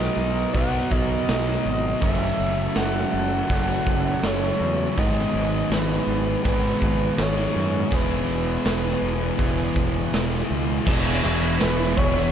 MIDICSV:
0, 0, Header, 1, 9, 480
1, 0, Start_track
1, 0, Tempo, 738007
1, 1312, Time_signature, 4, 2, 24, 8
1, 8012, End_track
2, 0, Start_track
2, 0, Title_t, "Soft synth lead"
2, 0, Program_c, 0, 80
2, 0, Note_on_c, 0, 75, 104
2, 348, Note_on_c, 0, 78, 120
2, 358, Note_off_c, 0, 75, 0
2, 591, Note_on_c, 0, 75, 102
2, 601, Note_off_c, 0, 78, 0
2, 1064, Note_off_c, 0, 75, 0
2, 1068, Note_on_c, 0, 75, 100
2, 1307, Note_off_c, 0, 75, 0
2, 1307, Note_on_c, 0, 75, 116
2, 1378, Note_off_c, 0, 75, 0
2, 1378, Note_on_c, 0, 76, 116
2, 1790, Note_off_c, 0, 76, 0
2, 1796, Note_on_c, 0, 78, 113
2, 2762, Note_on_c, 0, 73, 107
2, 2772, Note_off_c, 0, 78, 0
2, 3241, Note_on_c, 0, 75, 105
2, 3250, Note_off_c, 0, 73, 0
2, 3716, Note_off_c, 0, 75, 0
2, 3722, Note_on_c, 0, 71, 94
2, 4171, Note_off_c, 0, 71, 0
2, 4208, Note_on_c, 0, 71, 102
2, 4689, Note_on_c, 0, 73, 107
2, 4699, Note_off_c, 0, 71, 0
2, 5168, Note_on_c, 0, 71, 90
2, 5177, Note_off_c, 0, 73, 0
2, 6599, Note_off_c, 0, 71, 0
2, 7539, Note_on_c, 0, 71, 99
2, 7782, Note_on_c, 0, 73, 103
2, 7792, Note_off_c, 0, 71, 0
2, 8011, Note_off_c, 0, 73, 0
2, 8012, End_track
3, 0, Start_track
3, 0, Title_t, "Analog synth pad"
3, 0, Program_c, 1, 89
3, 0, Note_on_c, 1, 54, 80
3, 0, Note_on_c, 1, 59, 64
3, 0, Note_on_c, 1, 63, 62
3, 0, Note_on_c, 1, 70, 81
3, 1290, Note_off_c, 1, 70, 0
3, 1293, Note_off_c, 1, 59, 0
3, 1293, Note_off_c, 1, 63, 0
3, 1315, Note_on_c, 1, 64, 72
3, 1319, Note_on_c, 1, 69, 84
3, 1321, Note_on_c, 1, 61, 67
3, 3215, Note_off_c, 1, 64, 0
3, 3217, Note_off_c, 1, 69, 0
3, 3218, Note_off_c, 1, 61, 0
3, 3235, Note_on_c, 1, 59, 67
3, 3235, Note_on_c, 1, 68, 82
3, 5124, Note_off_c, 1, 54, 0
3, 5133, Note_off_c, 1, 59, 0
3, 5152, Note_on_c, 1, 59, 65
3, 5155, Note_on_c, 1, 52, 70
3, 7046, Note_off_c, 1, 68, 0
3, 7052, Note_off_c, 1, 59, 0
3, 7053, Note_off_c, 1, 52, 0
3, 7071, Note_on_c, 1, 64, 72
3, 7071, Note_on_c, 1, 83, 87
3, 7072, Note_on_c, 1, 73, 70
3, 7075, Note_on_c, 1, 68, 76
3, 8012, Note_off_c, 1, 64, 0
3, 8012, Note_off_c, 1, 68, 0
3, 8012, Note_off_c, 1, 73, 0
3, 8012, Note_off_c, 1, 83, 0
3, 8012, End_track
4, 0, Start_track
4, 0, Title_t, "Overdriven electric guitar"
4, 0, Program_c, 2, 29
4, 0, Note_on_c, 2, 47, 76
4, 0, Note_on_c, 2, 54, 82
4, 0, Note_on_c, 2, 59, 87
4, 0, Note_on_c, 2, 63, 85
4, 331, Note_off_c, 2, 47, 0
4, 339, Note_off_c, 2, 59, 0
4, 342, Note_off_c, 2, 63, 0
4, 349, Note_on_c, 2, 47, 72
4, 355, Note_off_c, 2, 54, 0
4, 358, Note_on_c, 2, 54, 70
4, 365, Note_on_c, 2, 59, 73
4, 372, Note_on_c, 2, 63, 70
4, 1297, Note_off_c, 2, 47, 0
4, 1305, Note_off_c, 2, 59, 0
4, 1308, Note_off_c, 2, 63, 0
4, 1310, Note_on_c, 2, 42, 82
4, 1317, Note_on_c, 2, 49, 89
4, 1320, Note_off_c, 2, 54, 0
4, 1322, Note_on_c, 2, 54, 82
4, 1327, Note_on_c, 2, 57, 85
4, 1329, Note_on_c, 2, 61, 89
4, 2257, Note_off_c, 2, 42, 0
4, 2261, Note_off_c, 2, 49, 0
4, 2266, Note_off_c, 2, 57, 0
4, 2267, Note_off_c, 2, 61, 0
4, 2268, Note_on_c, 2, 42, 73
4, 2277, Note_on_c, 2, 49, 69
4, 2280, Note_off_c, 2, 54, 0
4, 2282, Note_on_c, 2, 54, 69
4, 2287, Note_on_c, 2, 57, 77
4, 2292, Note_on_c, 2, 61, 82
4, 3216, Note_off_c, 2, 42, 0
4, 3220, Note_off_c, 2, 49, 0
4, 3223, Note_off_c, 2, 54, 0
4, 3225, Note_off_c, 2, 57, 0
4, 3228, Note_off_c, 2, 61, 0
4, 3235, Note_on_c, 2, 44, 77
4, 3239, Note_on_c, 2, 51, 86
4, 3244, Note_on_c, 2, 56, 88
4, 3251, Note_on_c, 2, 59, 87
4, 3255, Note_on_c, 2, 63, 88
4, 4179, Note_off_c, 2, 44, 0
4, 4181, Note_off_c, 2, 51, 0
4, 4186, Note_on_c, 2, 44, 67
4, 4189, Note_on_c, 2, 51, 71
4, 4192, Note_off_c, 2, 56, 0
4, 4195, Note_on_c, 2, 56, 74
4, 4200, Note_off_c, 2, 59, 0
4, 4203, Note_off_c, 2, 63, 0
4, 4203, Note_on_c, 2, 59, 69
4, 4206, Note_on_c, 2, 63, 82
4, 5134, Note_off_c, 2, 44, 0
4, 5135, Note_off_c, 2, 51, 0
4, 5143, Note_on_c, 2, 52, 82
4, 5144, Note_off_c, 2, 63, 0
4, 5149, Note_off_c, 2, 56, 0
4, 5151, Note_on_c, 2, 56, 87
4, 5152, Note_off_c, 2, 59, 0
4, 5155, Note_on_c, 2, 59, 88
4, 5162, Note_on_c, 2, 64, 96
4, 6092, Note_off_c, 2, 52, 0
4, 6096, Note_off_c, 2, 56, 0
4, 6098, Note_off_c, 2, 59, 0
4, 6100, Note_on_c, 2, 52, 69
4, 6102, Note_off_c, 2, 64, 0
4, 6108, Note_on_c, 2, 56, 73
4, 6115, Note_on_c, 2, 59, 76
4, 6124, Note_on_c, 2, 64, 68
4, 7051, Note_off_c, 2, 52, 0
4, 7055, Note_off_c, 2, 56, 0
4, 7058, Note_off_c, 2, 59, 0
4, 7059, Note_on_c, 2, 52, 93
4, 7063, Note_off_c, 2, 64, 0
4, 7065, Note_on_c, 2, 56, 91
4, 7071, Note_on_c, 2, 59, 91
4, 7072, Note_on_c, 2, 64, 85
4, 7079, Note_on_c, 2, 68, 99
4, 7287, Note_off_c, 2, 56, 0
4, 7295, Note_on_c, 2, 56, 78
4, 7296, Note_off_c, 2, 59, 0
4, 7304, Note_on_c, 2, 59, 72
4, 7306, Note_off_c, 2, 64, 0
4, 7306, Note_off_c, 2, 68, 0
4, 7309, Note_on_c, 2, 64, 81
4, 7314, Note_on_c, 2, 68, 79
4, 7534, Note_off_c, 2, 56, 0
4, 7535, Note_off_c, 2, 52, 0
4, 7537, Note_on_c, 2, 52, 92
4, 7541, Note_off_c, 2, 59, 0
4, 7542, Note_on_c, 2, 56, 89
4, 7547, Note_off_c, 2, 68, 0
4, 7548, Note_on_c, 2, 59, 108
4, 7550, Note_off_c, 2, 64, 0
4, 7552, Note_on_c, 2, 64, 96
4, 7555, Note_on_c, 2, 68, 99
4, 7648, Note_off_c, 2, 68, 0
4, 7656, Note_on_c, 2, 68, 74
4, 7665, Note_off_c, 2, 64, 0
4, 7668, Note_on_c, 2, 64, 63
4, 7669, Note_off_c, 2, 59, 0
4, 7677, Note_on_c, 2, 59, 65
4, 7779, Note_off_c, 2, 56, 0
4, 7783, Note_off_c, 2, 59, 0
4, 7785, Note_off_c, 2, 64, 0
4, 7785, Note_off_c, 2, 68, 0
4, 7902, Note_on_c, 2, 68, 79
4, 7909, Note_on_c, 2, 64, 72
4, 7919, Note_on_c, 2, 59, 61
4, 8012, Note_off_c, 2, 52, 0
4, 8012, Note_off_c, 2, 59, 0
4, 8012, Note_off_c, 2, 64, 0
4, 8012, Note_off_c, 2, 68, 0
4, 8012, End_track
5, 0, Start_track
5, 0, Title_t, "Distorted electric guitar"
5, 0, Program_c, 3, 30
5, 5135, Note_on_c, 3, 40, 95
5, 5143, Note_on_c, 3, 47, 92
5, 6088, Note_off_c, 3, 40, 0
5, 6092, Note_off_c, 3, 47, 0
5, 6097, Note_on_c, 3, 40, 82
5, 6110, Note_on_c, 3, 47, 80
5, 7049, Note_off_c, 3, 40, 0
5, 7056, Note_off_c, 3, 47, 0
5, 7059, Note_on_c, 3, 40, 89
5, 7071, Note_on_c, 3, 47, 102
5, 7288, Note_off_c, 3, 40, 0
5, 7296, Note_on_c, 3, 40, 79
5, 7301, Note_off_c, 3, 47, 0
5, 7309, Note_on_c, 3, 47, 78
5, 7320, Note_on_c, 3, 52, 90
5, 7419, Note_off_c, 3, 52, 0
5, 7421, Note_on_c, 3, 52, 73
5, 7433, Note_off_c, 3, 47, 0
5, 7441, Note_on_c, 3, 47, 59
5, 7526, Note_off_c, 3, 40, 0
5, 7534, Note_on_c, 3, 40, 102
5, 7543, Note_off_c, 3, 47, 0
5, 7551, Note_on_c, 3, 47, 103
5, 7556, Note_off_c, 3, 52, 0
5, 7779, Note_off_c, 3, 40, 0
5, 7787, Note_on_c, 3, 40, 74
5, 7789, Note_off_c, 3, 47, 0
5, 7797, Note_on_c, 3, 47, 75
5, 7807, Note_on_c, 3, 52, 79
5, 7907, Note_off_c, 3, 47, 0
5, 7907, Note_off_c, 3, 52, 0
5, 8012, Note_off_c, 3, 40, 0
5, 8012, End_track
6, 0, Start_track
6, 0, Title_t, "Fingered electric bass"
6, 0, Program_c, 4, 33
6, 107, Note_on_c, 4, 35, 86
6, 287, Note_off_c, 4, 35, 0
6, 356, Note_on_c, 4, 35, 91
6, 533, Note_off_c, 4, 35, 0
6, 597, Note_on_c, 4, 35, 85
6, 774, Note_off_c, 4, 35, 0
6, 836, Note_on_c, 4, 35, 90
6, 1013, Note_off_c, 4, 35, 0
6, 1076, Note_on_c, 4, 32, 93
6, 1253, Note_off_c, 4, 32, 0
6, 1316, Note_on_c, 4, 30, 88
6, 1494, Note_off_c, 4, 30, 0
6, 1558, Note_on_c, 4, 30, 79
6, 1735, Note_off_c, 4, 30, 0
6, 1794, Note_on_c, 4, 30, 85
6, 1973, Note_off_c, 4, 30, 0
6, 2040, Note_on_c, 4, 30, 83
6, 2216, Note_off_c, 4, 30, 0
6, 2275, Note_on_c, 4, 30, 103
6, 2453, Note_off_c, 4, 30, 0
6, 2515, Note_on_c, 4, 30, 88
6, 2693, Note_off_c, 4, 30, 0
6, 2751, Note_on_c, 4, 30, 90
6, 2930, Note_off_c, 4, 30, 0
6, 2993, Note_on_c, 4, 40, 88
6, 3172, Note_off_c, 4, 40, 0
6, 3238, Note_on_c, 4, 32, 91
6, 3415, Note_off_c, 4, 32, 0
6, 3474, Note_on_c, 4, 32, 82
6, 3652, Note_off_c, 4, 32, 0
6, 3706, Note_on_c, 4, 32, 81
6, 3887, Note_off_c, 4, 32, 0
6, 3948, Note_on_c, 4, 32, 82
6, 4128, Note_off_c, 4, 32, 0
6, 4197, Note_on_c, 4, 32, 99
6, 4374, Note_off_c, 4, 32, 0
6, 4436, Note_on_c, 4, 32, 85
6, 4613, Note_off_c, 4, 32, 0
6, 4671, Note_on_c, 4, 32, 85
6, 4850, Note_off_c, 4, 32, 0
6, 4915, Note_on_c, 4, 42, 88
6, 5093, Note_off_c, 4, 42, 0
6, 5156, Note_on_c, 4, 28, 91
6, 5333, Note_off_c, 4, 28, 0
6, 5389, Note_on_c, 4, 28, 88
6, 5569, Note_off_c, 4, 28, 0
6, 5630, Note_on_c, 4, 28, 76
6, 5809, Note_off_c, 4, 28, 0
6, 5866, Note_on_c, 4, 28, 86
6, 6046, Note_off_c, 4, 28, 0
6, 6110, Note_on_c, 4, 28, 92
6, 6289, Note_off_c, 4, 28, 0
6, 6349, Note_on_c, 4, 28, 80
6, 6528, Note_off_c, 4, 28, 0
6, 6596, Note_on_c, 4, 28, 79
6, 6773, Note_off_c, 4, 28, 0
6, 6833, Note_on_c, 4, 37, 85
6, 7011, Note_off_c, 4, 37, 0
6, 7070, Note_on_c, 4, 28, 88
6, 7300, Note_off_c, 4, 28, 0
6, 7313, Note_on_c, 4, 28, 90
6, 7541, Note_off_c, 4, 28, 0
6, 7559, Note_on_c, 4, 28, 89
6, 7784, Note_off_c, 4, 28, 0
6, 7791, Note_on_c, 4, 28, 92
6, 8012, Note_off_c, 4, 28, 0
6, 8012, End_track
7, 0, Start_track
7, 0, Title_t, "Muted distorted electric guitar strokes"
7, 7909, Note_on_c, 9, 29, 49
7, 7974, Note_off_c, 9, 29, 0
7, 8012, End_track
8, 0, Start_track
8, 0, Title_t, "Muted overdriven electric guitar strokes"
8, 7786, Note_on_c, 9, 29, 54
8, 7851, Note_off_c, 9, 29, 0
8, 8012, End_track
9, 0, Start_track
9, 0, Title_t, "Drums"
9, 355, Note_on_c, 9, 36, 89
9, 356, Note_on_c, 9, 46, 47
9, 420, Note_off_c, 9, 36, 0
9, 422, Note_off_c, 9, 46, 0
9, 595, Note_on_c, 9, 36, 89
9, 660, Note_off_c, 9, 36, 0
9, 834, Note_on_c, 9, 46, 59
9, 839, Note_on_c, 9, 38, 114
9, 899, Note_off_c, 9, 46, 0
9, 904, Note_off_c, 9, 38, 0
9, 1310, Note_on_c, 9, 46, 56
9, 1314, Note_on_c, 9, 36, 107
9, 1375, Note_off_c, 9, 46, 0
9, 1379, Note_off_c, 9, 36, 0
9, 1790, Note_on_c, 9, 46, 54
9, 1794, Note_on_c, 9, 38, 101
9, 1855, Note_off_c, 9, 46, 0
9, 1859, Note_off_c, 9, 38, 0
9, 2272, Note_on_c, 9, 46, 52
9, 2276, Note_on_c, 9, 36, 90
9, 2337, Note_off_c, 9, 46, 0
9, 2341, Note_off_c, 9, 36, 0
9, 2515, Note_on_c, 9, 36, 82
9, 2580, Note_off_c, 9, 36, 0
9, 2750, Note_on_c, 9, 46, 63
9, 2755, Note_on_c, 9, 38, 117
9, 2815, Note_off_c, 9, 46, 0
9, 2820, Note_off_c, 9, 38, 0
9, 3237, Note_on_c, 9, 36, 113
9, 3237, Note_on_c, 9, 46, 54
9, 3302, Note_off_c, 9, 36, 0
9, 3302, Note_off_c, 9, 46, 0
9, 3715, Note_on_c, 9, 46, 51
9, 3719, Note_on_c, 9, 38, 98
9, 3780, Note_off_c, 9, 46, 0
9, 3784, Note_off_c, 9, 38, 0
9, 4197, Note_on_c, 9, 36, 96
9, 4197, Note_on_c, 9, 46, 44
9, 4262, Note_off_c, 9, 36, 0
9, 4262, Note_off_c, 9, 46, 0
9, 4435, Note_on_c, 9, 36, 84
9, 4500, Note_off_c, 9, 36, 0
9, 4668, Note_on_c, 9, 46, 54
9, 4673, Note_on_c, 9, 38, 117
9, 4733, Note_off_c, 9, 46, 0
9, 4738, Note_off_c, 9, 38, 0
9, 5149, Note_on_c, 9, 46, 55
9, 5151, Note_on_c, 9, 36, 109
9, 5214, Note_off_c, 9, 46, 0
9, 5216, Note_off_c, 9, 36, 0
9, 5626, Note_on_c, 9, 46, 53
9, 5631, Note_on_c, 9, 38, 102
9, 5691, Note_off_c, 9, 46, 0
9, 5696, Note_off_c, 9, 38, 0
9, 6104, Note_on_c, 9, 46, 46
9, 6108, Note_on_c, 9, 36, 85
9, 6169, Note_off_c, 9, 46, 0
9, 6173, Note_off_c, 9, 36, 0
9, 6348, Note_on_c, 9, 36, 78
9, 6413, Note_off_c, 9, 36, 0
9, 6590, Note_on_c, 9, 46, 66
9, 6595, Note_on_c, 9, 38, 120
9, 6655, Note_off_c, 9, 46, 0
9, 6660, Note_off_c, 9, 38, 0
9, 7067, Note_on_c, 9, 49, 124
9, 7068, Note_on_c, 9, 36, 114
9, 7132, Note_off_c, 9, 49, 0
9, 7133, Note_off_c, 9, 36, 0
9, 7547, Note_on_c, 9, 46, 60
9, 7551, Note_on_c, 9, 38, 108
9, 7612, Note_off_c, 9, 46, 0
9, 7616, Note_off_c, 9, 38, 0
9, 7789, Note_on_c, 9, 36, 97
9, 7854, Note_off_c, 9, 36, 0
9, 8012, End_track
0, 0, End_of_file